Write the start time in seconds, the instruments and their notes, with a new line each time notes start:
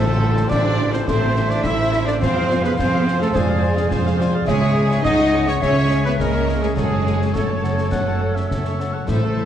Already playing: double bass section A1, timpani A2, harp A2 A4, cello section A3, french horn section A4 C5, violin section A4, trumpet A4, clarinet A4
0.07 viola section A4 C5, violin section C5 A5
0.21 harp E3, violin section A4 E5, viola section A4 C5
0.36 viola section A4 C5, violin section C5 A5, snare
0.49 double bass section A1, harp C4, cello section D4, violin section A4 D5 E5, viola section A4 C5, clarinet D5, trumpet D5, concert bass drum, snare
0.65 viola section A4 C5, violin section C5 A5
0.79 harp E3, violin section A4 E5, viola section A4 C5
0.92 cello section C4, viola section A4 C5, violin section C5 A5, trumpet C5, clarinet C5, snare
1.04 double bass section A1, harp A2, cello section C4, viola section A4 C5, violin section C5 E5, trumpet C5, flute E5, concert bass drum, snare
1.08 violin section A4, french horn section A4 C5, clarinet C5
1.20 viola section A4 C5, violin section C5 A5
1.35 harp C4, violin section A4 E5, viola section A4 C5, snare
1.48 cello section D4, viola section A4 C5, violin section C5 D5 A5, clarinet D5, trumpet D5, snare
1.62 double bass section A1, harp E3, cello section E4, viola section A4 C5, violin section A4 E5, clarinet E5, trumpet E5, concert bass drum, snare
1.80 viola section A4 C5, violin section C5 A5
1.92 harp C4, violin section A4 E5, viola section A4 C5, snare
2.06 cello section D4, viola section A4 C5, violin section C5 D5 A5, clarinet D5, trumpet D5, snare
2.20 harp F2, double bass section F2, cello section C4, viola section F4 C5, clarinet C5, trumpet C5, violin section C5 F5 G#5, french horn section C5, flute F5, concert bass drum, snare
2.35 viola section G#4 F5, violin section C5 F5
2.49 harp C3, viola section F4 C5, violin section F5 G#5, snare
2.63 cello section B3, viola section G#4 F5, violin section B4 C5 F5, trumpet B4, clarinet B4, snare
2.76 double bass section F2, cello section C4, harp C4, viola section F4 C5, clarinet C5, violin section C5 F5 G#5, trumpet C5, concert bass drum, snare
2.91 viola section G#4 F5, violin section C5 F5
3.05 harp C3, viola section F4 C5, violin section F5 G#5, snare
3.20 cello section A3, viola section G#4 F5, trumpet A4, clarinet A4, violin section A4 C5 F5, snare
3.33 harp F2, double bass section F2, cello section G#3, viola section F4 C5, violin section G#4 F5 G#5, clarinet G#4, trumpet G#4, french horn section C5, flute D5, concert bass drum, snare
3.48 viola section G#4 F5, violin section C5 F5
3.61 harp C4, viola section F4 C5, violin section F5 G#5
3.76 viola section G#4 F5, violin section C5 F5, snare
3.90 double bass section F2, harp C3, viola section F4 C5, flute C5, violin section F5 G#5, concert bass drum, snare
4.05 viola section G#4 F5, violin section C5 F5, snare
4.19 harp C4, viola section F4 C5, flute D5, violin section F5 G#5, snare
4.33 viola section G#4 F5, violin section C5 F5
4.46 double bass section C#2, harp C#3, cello section G#3, clarinet G#4, violin section G#4 C#5 G#5, trumpet G#4, viola section G#4 C#5, french horn section C#5 E5, flute E5, concert bass drum, snare
4.61 viola section G#4 C#5, violin section E5 C#6
4.75 harp G#3, viola section G#4 C#5, violin section C#5 G#5
4.89 viola section G#4 C#5, violin section E5 C#6, snare
5.03 double bass section C#2, harp C#4, cello section D#4, viola section G#4 C#5, violin section C#5 D#5 G#5, clarinet D#5, trumpet D#5, flute F#5, concert bass drum, snare
5.16 viola section G#4 C#5, violin section E5 C#6
5.30 harp G#3, violin section C#5 G#5
5.34 viola section G#4 C#5
5.44 viola section G#4 C#5, violin section E5 C#6
5.48 cello section C#4, clarinet C#5, violin section C#5, trumpet C#5, snare
5.59 double bass section C#2, harp C#3, cello section C#4, viola section G#4 C#5, violin section C#5 G#5, clarinet C#5, trumpet C#5, flute E5, french horn section E5, concert bass drum, snare
5.63 french horn section C#5
5.75 viola section G#4 C#5, violin section E5 C#6
5.90 harp C#4, viola section G#4 C#5, violin section C#5 G#5, snare
6.04 cello section B3, viola section G#4 C#5, violin section B4 E5 C#6, trumpet B4, clarinet B4, snare
6.18 double bass section C#2, harp G#3, cello section A#3, viola section G#4 C#5, violin section A#4 C#5 G#5, clarinet A#4, trumpet A#4, flute D#5, concert bass drum, snare
6.32 viola section G#4 C#5, violin section E5 C#6
6.47 harp C#4, viola section G#4 C#5, violin section C#5 G#5, snare
6.62 cello section G#3, viola section G#4 C#5, clarinet G#4, trumpet G#4, violin section G#4 E5 C#6, snare
6.76 double bass section F#1, harp F#2, cello section G#3, violin section G#4 A4 F#5, trumpet G#4, clarinet G#4, viola section A4 C#5, french horn section C#5, flute C#5, concert bass drum, snare
6.91 viola section A4 C#5, violin section C#5 A5
7.05 harp C#3, viola section A4 C#5, violin section A4 F#5, snare
7.20 viola section A4 C#5, violin section C#5 A5, snare
7.33 double bass section F#1, cello section A3, harp C#4, violin section A4 F#5, clarinet A4, trumpet A4, viola section A4 C#5, oboe C#5, concert bass drum, snare
7.48 viola section A4 C#5, violin section C#5 A5
7.63 harp C#3, violin section A4 F#5, viola section A4 C#5, snare
7.78 viola section A4 C#5, violin section C#5 A5, snare
7.91 double bass section F#1, harp F#2, viola section A4 C#5, violin section A4 F#5, french horn section C#5, oboe F#5, concert bass drum, snare
8.06 viola section A4 C#5, violin section C#5 A5
8.20 harp C#4, viola section A4 C#5, violin section A4 F#5
8.35 viola section A4 C#5, violin section C#5 A5, oboe E5, snare
8.49 double bass section F#1, harp C#3, viola section A4 C#5, violin section A4 F#5, oboe E5, concert bass drum, snare
8.65 viola section A4 C#5, violin section C#5 A5, snare
8.78 harp C#4, violin section A4 F#5, viola section A4 C#5, snare
8.93 viola section A4 C#5, violin section C#5 A5, oboe F#5
9.07 double bass section A1, harp A2, timpani A2, cello section A3, viola section E4 C5, violin section A4 E5, french horn section A4 C5, trumpet A4, clarinet A4, flute C5, concert bass drum, snare, crash
9.21 viola section A4, violin section C5 A5
9.35 harp E3, viola section E4 C5, violin section A4 E5